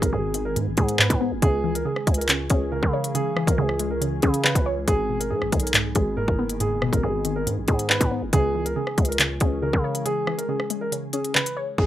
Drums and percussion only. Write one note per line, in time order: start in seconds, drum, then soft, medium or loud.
0.02 kick medium
0.02 closed hi-hat medium
0.34 closed hi-hat medium
0.56 closed hi-hat medium
0.77 kick loud
0.77 closed hi-hat medium
0.89 closed hi-hat medium
0.99 clap loud
1.10 kick medium
1.10 closed hi-hat medium
1.42 kick loud
1.42 closed hi-hat medium
1.75 closed hi-hat medium
1.96 cross-stick medium
2.07 kick loud
2.07 closed hi-hat medium
2.14 closed hi-hat medium
2.21 closed hi-hat medium
2.29 clap loud
2.29 closed hi-hat medium
2.50 kick loud
2.50 closed hi-hat medium
2.83 kick medium
3.04 closed hi-hat medium
3.15 closed hi-hat medium
3.37 cross-stick medium
3.47 kick loud
3.47 closed hi-hat medium
3.69 cross-stick medium
3.79 closed hi-hat medium
4.02 closed hi-hat medium
4.22 kick loud
4.22 closed hi-hat medium
4.34 closed hi-hat medium
4.45 clap loud
4.55 kick medium
4.55 closed hi-hat medium
4.88 kick loud
4.88 closed hi-hat medium
5.21 closed hi-hat medium
5.42 cross-stick medium
5.52 kick loud
5.52 closed hi-hat medium
5.60 closed hi-hat medium
5.67 closed hi-hat medium
5.74 clap loud
5.74 closed hi-hat medium
5.95 kick loud
5.95 closed hi-hat medium
6.28 kick loud
6.49 closed hi-hat medium
6.60 closed hi-hat medium
6.82 cross-stick medium
6.93 kick loud
6.93 closed hi-hat medium
7.25 closed hi-hat medium
7.47 closed hi-hat medium
7.68 kick loud
7.68 closed hi-hat medium
7.79 closed hi-hat medium
7.90 clap loud
8.01 kick loud
8.01 closed hi-hat medium
8.33 kick loud
8.33 closed hi-hat medium
8.66 closed hi-hat medium
8.87 cross-stick medium
8.98 kick loud
8.98 closed hi-hat medium
9.05 closed hi-hat medium
9.12 closed hi-hat medium
9.19 clap loud
9.19 closed hi-hat medium
9.40 kick loud
9.40 closed hi-hat medium
9.73 kick loud
9.95 closed hi-hat medium
10.06 closed hi-hat medium
10.27 cross-stick medium
10.39 closed hi-hat medium
10.60 cross-stick medium
10.70 closed hi-hat medium
10.92 closed hi-hat medium
11.13 closed hi-hat medium
11.25 closed hi-hat medium
11.35 clap loud
11.46 closed hi-hat medium
11.78 kick loud